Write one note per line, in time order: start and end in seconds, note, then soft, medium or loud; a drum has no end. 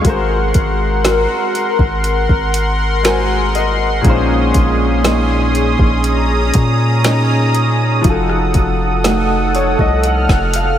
0.00 2.99 G#3 medium
0.00 0.15 C#4 medium
0.00 0.15 F4 medium
0.00 3.00 F#4 medium
0.00 4.00 A#4 medium
0.00 4.00 F#5 medium
0.00 6.00 C6 medium
0.05 0.53 G#1 loud
0.05 4.07 G#3 medium
0.05 3.02 A#4 medium
0.05 kick loud
0.05 closed hi-hat medium
0.09 3.03 C5 medium
0.54 1.27 G#1 loud
0.54 kick medium
0.54 closed hi-hat medium
1.04 3.04 C4 medium
1.04 3.04 F#4 medium
1.04 3.05 A#4 medium
1.04 snare loud
1.04 closed hi-hat medium
1.55 closed hi-hat medium
1.79 2.27 G#1 loud
1.79 kick medium
2.04 closed hi-hat medium
2.29 4.00 G#1 loud
2.29 kick loud
2.54 closed hi-hat medium
3.03 4.02 G#3 medium
3.03 5.05 C4 medium
3.03 4.04 F#4 medium
3.03 4.15 F#4 medium
3.03 5.07 A#4 medium
3.03 4.05 A#4 medium
3.03 4.06 C5 medium
3.03 3.51 G#5 medium
3.03 snare loud
3.03 closed hi-hat medium
3.55 4.01 D#5 medium
3.55 closed hi-hat medium
4.01 4.53 A#1 loud
4.01 7.99 A#2 medium
4.01 8.04 A#2 medium
4.01 8.00 G#3 medium
4.01 8.00 C#4 medium
4.01 8.00 G#4 medium
4.01 10.00 D#6 medium
4.01 kick loud
4.01 closed hi-hat medium
4.05 8.01 C#4 medium
4.05 8.02 D#4 medium
4.05 8.03 C5 medium
4.54 5.76 A#1 loud
4.54 kick medium
4.54 closed hi-hat medium
5.04 7.03 G#3 medium
5.04 7.04 C#4 medium
5.04 7.05 D#4 medium
5.04 snare loud
5.04 closed hi-hat medium
5.55 closed hi-hat medium
5.79 6.51 A#1 loud
5.79 kick medium
6.04 8.03 A#5 medium
6.04 closed hi-hat medium
6.54 8.01 A#2 loud
6.54 kick medium
6.54 closed hi-hat medium
7.04 8.14 G#3 medium
7.04 8.15 C#4 medium
7.04 9.05 D#4 medium
7.04 snare loud
7.04 closed hi-hat medium
7.55 closed hi-hat medium
8.01 8.53 F1 loud
8.01 10.78 F3 medium
8.01 10.78 D#4 medium
8.01 10.78 A4 medium
8.01 10.78 F#5 medium
8.01 kick loud
8.01 closed hi-hat medium
8.07 10.78 F#4 medium
8.07 10.78 A4 medium
8.29 cross-stick medium
8.54 9.76 F1 loud
8.54 kick medium
8.54 closed hi-hat medium
9.04 10.78 A3 medium
9.04 10.78 D#4 medium
9.04 10.78 F#4 medium
9.04 snare loud
9.04 closed hi-hat medium
9.55 9.78 C#5 medium
9.55 closed hi-hat medium
9.79 10.27 C2 loud
9.79 10.03 D#5 medium
9.79 kick medium
10.04 10.51 F#5 medium
10.04 10.78 F6 medium
10.04 closed hi-hat medium
10.29 10.78 F1 loud
10.29 kick loud
10.29 snare medium
10.54 10.78 F5 medium
10.54 closed hi-hat medium